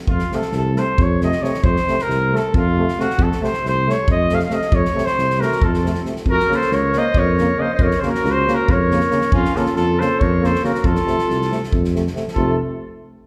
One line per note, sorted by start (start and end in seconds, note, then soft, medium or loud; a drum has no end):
0.07 0.22 F2 medium
0.07 0.36 F4 loud
0.07 kick medium
0.19 snare soft
0.32 0.41 C3 medium
0.32 0.41 A3 medium
0.32 0.55 A4 medium
0.32 snare soft
0.42 snare soft
0.52 0.77 C2 loud
0.52 0.80 A4 loud
0.52 snare soft
0.75 0.87 C3 medium
0.75 0.84 A3 medium
0.75 1.04 C5 loud
0.75 snare soft
0.98 1.34 F2 loud
0.98 1.23 C#5 loud
0.98 kick loud
1.21 1.30 C3 medium
1.21 1.31 A3 medium
1.21 1.44 D#5 loud
1.21 snare soft
1.32 snare soft
1.42 1.51 C3 medium
1.42 1.51 A3 medium
1.42 1.65 C#5 loud
1.42 snare soft
1.54 snare soft
1.63 1.77 F2 loud
1.63 2.03 C5 loud
1.63 kick loud
1.76 snare soft
1.88 1.97 C3 medium
1.88 1.96 A3 medium
1.88 snare soft
1.99 2.38 A#4 loud
1.99 snare soft
2.08 2.33 C2 loud
2.08 snare soft
2.32 2.40 C3 medium
2.32 2.40 A3 medium
2.32 snare soft
2.37 2.56 A4 loud
2.54 2.89 F2 loud
2.54 3.02 F4 loud
2.54 kick loud
2.78 2.86 C3 medium
2.78 2.86 A3 medium
2.88 snare soft
2.99 3.07 C3 medium
2.99 3.07 A3 medium
2.99 3.24 F#4 loud
2.99 snare soft
3.10 snare soft
3.18 3.31 F2 loud
3.18 kick loud
3.23 3.43 A4 loud
3.32 snare soft
3.41 3.50 C3 medium
3.41 3.50 A3 medium
3.41 3.63 C5 medium
3.41 snare soft
3.53 snare soft
3.64 3.88 C2 medium
3.64 3.92 C5 loud
3.64 snare soft
3.86 3.94 C3 medium
3.86 3.96 A3 medium
3.86 snare soft
3.91 4.10 C#5 loud
4.08 4.44 F2 medium
4.08 4.36 D#5 loud
4.08 kick loud
4.29 4.39 C3 medium
4.29 4.39 A3 medium
4.29 snare soft
4.35 4.37 F5 loud
4.39 snare soft
4.45 4.55 F5 medium
4.49 4.59 C3 medium
4.49 4.58 A3 medium
4.49 snare soft
4.53 4.76 D#5 loud
4.62 snare soft
4.72 4.85 F2 loud
4.72 5.07 C#5 loud
4.72 kick loud
4.85 snare soft
4.94 5.03 C3 medium
4.94 5.03 A3 medium
4.94 snare soft
5.05 5.42 C5 loud
5.05 snare soft
5.18 5.42 C2 medium
5.18 snare soft
5.30 snare soft
5.38 5.47 C3 medium
5.38 5.49 A3 medium
5.38 5.65 A#4 loud
5.38 snare soft
5.42 5.66 F#4 medium
5.52 snare soft
5.62 5.98 F2 medium
5.62 6.03 F4 medium
5.62 6.02 A4 medium
5.62 kick loud
5.74 snare soft
5.83 5.91 C3 medium
5.83 5.93 A3 medium
5.83 snare soft
5.95 snare soft
6.04 6.12 C3 medium
6.04 6.14 A3 medium
6.04 snare soft
6.16 snare soft
6.26 6.39 F2 medium
6.26 6.57 A#4 loud
6.26 kick medium
6.31 6.55 F#4 loud
6.40 snare soft
6.48 6.57 C#3 medium
6.48 6.58 A#3 medium
6.48 snare soft
6.54 6.74 A4 medium
6.54 6.75 C5 loud
6.61 snare soft
6.71 6.96 C#2 loud
6.71 7.00 A#4 medium
6.71 6.99 C#5 loud
6.71 snare soft
6.91 7.00 C#3 medium
6.91 snare soft
6.96 7.04 A#3 medium
6.96 7.21 C5 medium
6.96 7.19 D#5 loud
7.14 7.50 F2 loud
7.14 7.61 C#5 loud
7.14 kick loud
7.20 7.64 A#4 loud
7.36 7.45 C#3 medium
7.36 7.47 A#3 medium
7.36 snare soft
7.56 7.65 C#3 medium
7.56 7.73 D#5 loud
7.60 7.68 A#3 medium
7.60 7.75 C5 medium
7.74 7.84 C5 medium
7.74 7.85 D#5 medium
7.79 7.92 F2 loud
7.79 8.01 A#4 loud
7.79 kick loud
7.84 8.01 C#5 loud
7.91 snare soft
7.99 8.10 C#3 medium
7.99 8.05 A4 soft
7.99 8.11 C5 medium
7.99 snare soft
8.04 8.12 A#3 medium
8.04 8.25 F#4 medium
8.09 8.33 A#4 loud
8.15 snare soft
8.24 8.48 C#2 loud
8.24 8.47 F#4 medium
8.24 snare soft
8.31 8.56 C5 loud
8.47 8.55 C#3 medium
8.47 8.55 A#3 medium
8.47 8.71 F#4 medium
8.47 snare soft
8.54 8.73 A#4 loud
8.68 9.04 F2 loud
8.68 9.32 A#4 medium
8.68 9.33 C#5 loud
8.68 kick loud
8.91 8.99 C#3 medium
8.91 8.99 A#3 medium
8.91 snare soft
9.00 snare soft
9.10 9.20 C#3 medium
9.10 9.18 A#3 medium
9.10 snare soft
9.21 snare soft
9.32 9.45 F2 loud
9.32 9.57 C#4 loud
9.32 9.58 F4 loud
9.32 kick loud
9.45 snare soft
9.55 9.63 C#3 medium
9.55 9.65 A#3 medium
9.55 9.75 F4 medium
9.55 9.75 A4 loud
9.55 snare soft
9.66 snare soft
9.76 10.01 F2 loud
9.76 10.02 F4 medium
9.76 10.01 A4 loud
9.76 snare soft
9.99 10.09 C#3 medium
9.99 10.09 A#3 medium
9.99 10.24 A4 medium
9.99 10.21 C5 loud
9.99 snare soft
10.19 10.56 F2 loud
10.19 10.46 A#4 medium
10.19 10.47 C#5 loud
10.19 kick loud
10.42 10.51 C#3 medium
10.42 10.51 A#3 medium
10.42 10.64 A4 medium
10.42 10.65 C5 loud
10.42 snare soft
10.55 snare soft
10.63 10.71 C#3 medium
10.63 10.71 A#3 medium
10.63 10.86 F#4 medium
10.63 10.87 A#4 medium
10.63 snare soft
10.75 snare soft
10.84 10.97 F2 loud
10.84 11.95 F4 medium
10.84 11.96 A4 loud
10.84 kick loud
10.95 snare soft
11.06 11.15 C3 medium
11.06 11.16 A3 medium
11.06 snare soft
11.19 snare soft
11.28 11.53 C2 medium
11.28 snare soft
11.42 snare soft
11.51 11.60 C3 medium
11.51 11.60 A3 medium
11.51 snare soft
11.64 snare soft
11.72 12.08 F2 medium
11.72 kick loud
11.84 snare soft
11.94 12.03 C3 medium
11.94 12.03 A3 medium
11.94 snare soft
12.07 snare soft
12.15 12.23 C3 medium
12.15 12.24 A3 medium
12.15 snare soft
12.28 snare soft
12.34 12.58 F1 loud
12.34 12.56 C3 medium
12.34 12.58 A3 medium
12.34 12.57 F4 medium
12.34 12.56 A4 loud
12.34 kick medium